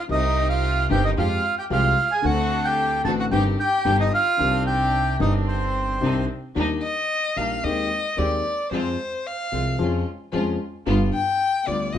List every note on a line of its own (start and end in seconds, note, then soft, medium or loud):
0.08 0.86 C2 medium
0.08 0.86 C3 medium
0.08 0.85 D#3 medium
0.08 0.86 G3 medium
0.08 0.86 C4 medium
0.08 0.86 D#4 medium
0.08 0.86 G4 medium
0.08 0.48 D#5 medium
0.12 0.48 D#4 medium
0.12 0.87 G4 medium
0.50 0.89 F4 medium
0.50 0.87 F5 medium
0.90 1.12 G1 medium
0.90 1.13 G2 medium
0.90 1.12 D#3 medium
0.90 1.13 G3 medium
0.90 1.12 C4 medium
0.90 1.13 C4 medium
0.90 1.12 D#4 medium
0.90 1.12 G4 medium
0.90 1.13 G4 medium
0.90 1.04 G4 medium
0.90 1.05 G5 medium
1.05 1.12 D#4 medium
1.05 1.10 D#5 medium
1.16 1.40 F2 medium
1.16 1.40 F3 medium
1.16 1.39 G#3 medium
1.16 1.40 G#3 medium
1.16 1.40 C4 medium
1.16 1.39 F4 medium
1.16 1.56 F4 medium
1.16 1.39 G4 medium
1.16 1.40 G4 medium
1.16 1.55 F5 medium
1.59 1.65 G4 medium
1.59 1.64 G5 medium
1.70 1.93 C2 medium
1.70 1.93 C3 medium
1.70 1.93 F3 medium
1.70 1.93 G#3 medium
1.70 1.93 C4 medium
1.70 1.93 F4 medium
1.70 2.09 F4 medium
1.70 1.93 G4 medium
1.70 2.13 F5 medium
2.12 2.24 G#4 medium
2.12 2.25 G#5 medium
2.22 3.01 D2 medium
2.22 3.01 D3 medium
2.22 3.00 A3 medium
2.22 3.01 C4 medium
2.22 3.01 D4 medium
2.22 3.01 A4 medium
2.22 2.66 F#5 medium
2.26 2.63 F#4 medium
2.65 3.03 G4 medium
2.65 3.02 G5 medium
3.04 3.27 A1 medium
3.04 3.27 A1 loud
3.04 3.27 A2 medium
3.04 3.27 D3 medium
3.04 3.27 A3 medium
3.04 3.27 C4 medium
3.04 3.27 D4 medium
3.04 3.27 F#4 medium
3.04 3.28 F#4 medium
3.04 3.13 A4 medium
3.04 3.11 A5 medium
3.20 3.26 F#4 medium
3.20 3.26 F#5 medium
3.31 3.54 G1 medium
3.31 3.54 G2 medium
3.31 3.54 D#3 medium
3.31 3.54 G3 medium
3.31 3.54 C4 medium
3.31 3.54 D#4 medium
3.31 3.54 G4 medium
3.31 3.44 G4 medium
3.31 3.44 G5 medium
3.59 3.96 G4 medium
3.59 3.97 G5 loud
3.85 4.08 G1 medium
3.85 4.08 G2 medium
3.85 4.08 D3 medium
3.85 4.08 G3 medium
3.85 4.08 B3 medium
3.85 4.09 D4 medium
3.85 4.08 G4 medium
3.85 4.09 G4 medium
4.00 4.12 D#4 medium
4.00 4.12 D#5 medium
4.13 4.63 F4 medium
4.13 4.63 F5 medium
4.37 5.16 C2 medium
4.37 5.16 C3 medium
4.37 5.15 D#3 medium
4.37 5.16 C4 medium
4.37 5.16 D4 medium
4.37 5.17 G4 medium
4.67 5.18 G4 medium
4.67 5.17 G5 medium
5.18 5.97 G1 medium
5.18 5.97 G2 medium
5.18 5.96 D#3 medium
5.18 5.97 C4 medium
5.18 5.98 C4 medium
5.18 5.98 D4 medium
5.18 5.33 D#4 medium
5.18 5.33 D#5 medium
5.22 5.99 G4 medium
5.48 6.26 C4 medium
5.48 6.25 C5 medium
6.01 6.24 C2 medium
6.01 6.25 C2 medium
6.01 6.24 C3 medium
6.01 6.24 D#3 medium
6.01 6.24 C4 medium
6.01 6.25 C4 medium
6.01 6.24 D4 medium
6.01 6.25 D4 medium
6.01 6.25 D#4 medium
6.01 6.24 G4 medium
6.55 6.78 D#2 medium
6.55 6.79 D#2 medium
6.55 6.79 D#3 medium
6.55 6.79 G3 medium
6.55 6.78 A#3 medium
6.55 6.78 D4 medium
6.55 6.79 D4 medium
6.55 6.79 D#4 medium
6.55 6.79 G4 medium
6.83 7.39 D#5 loud
7.36 7.59 A#1 soft
7.36 7.60 A#1 medium
7.36 7.60 A#2 soft
7.36 7.59 D#3 soft
7.36 7.60 G3 soft
7.36 7.60 A#3 soft
7.36 7.59 D4 soft
7.36 7.60 D4 soft
7.36 7.60 D#4 soft
7.36 7.60 G4 soft
7.36 7.66 F5 medium
7.63 7.87 D#2 medium
7.63 7.86 D#3 medium
7.63 7.86 G#3 medium
7.63 7.87 G#3 medium
7.63 7.86 C4 medium
7.63 7.87 C4 medium
7.63 7.87 G4 medium
7.63 8.20 D#5 medium
8.17 8.40 D#2 medium
8.17 8.41 D#2 medium
8.17 8.40 D#3 medium
8.17 8.40 G#3 medium
8.17 8.40 C4 medium
8.17 8.41 C4 medium
8.17 8.40 G4 medium
8.17 8.41 G4 medium
8.17 8.72 D5 medium
8.71 8.94 F2 medium
8.71 8.94 F3 medium
8.71 8.94 G#3 medium
8.71 8.94 C4 medium
8.71 8.95 C4 medium
8.71 8.95 F4 medium
8.71 8.95 G#4 medium
8.71 9.28 C5 medium
9.27 9.80 F5 medium
9.52 9.75 C2 medium
9.52 9.75 C2 soft
9.52 9.75 C3 medium
9.52 9.75 F3 soft
9.52 9.75 G#3 soft
9.52 9.75 C4 soft
9.52 9.76 F4 soft
9.52 9.75 G#4 soft
9.78 10.02 F2 medium
9.78 10.02 F3 medium
9.78 10.01 G#3 medium
9.78 10.02 G#3 medium
9.78 10.02 C#4 medium
9.78 10.02 F4 medium
9.78 10.02 G#4 medium
10.32 10.55 F2 medium
10.32 10.56 F2 medium
10.32 10.56 F3 medium
10.32 10.55 G#3 medium
10.32 10.56 G#3 medium
10.32 10.55 C#4 medium
10.32 10.56 C#4 medium
10.32 10.56 F4 medium
10.32 10.56 G#4 medium
10.86 11.09 G1 medium
10.86 11.09 G2 medium
10.86 11.09 D3 medium
10.86 11.09 G3 medium
10.86 11.09 B3 medium
10.86 11.09 F4 medium
11.14 11.69 G5 loud
11.67 11.90 D2 medium
11.67 11.90 D3 medium
11.67 11.90 G3 soft
11.67 11.90 B3 soft
11.67 11.90 F4 soft
11.67 11.90 F4 medium
11.67 11.94 D5 medium
11.93 11.98 A1 medium
11.93 11.98 A2 medium
11.93 11.98 C3 medium
11.93 11.98 F3 medium
11.93 11.98 A3 medium
11.93 11.98 C4 medium
11.93 11.98 F4 medium
11.93 11.98 D#5 medium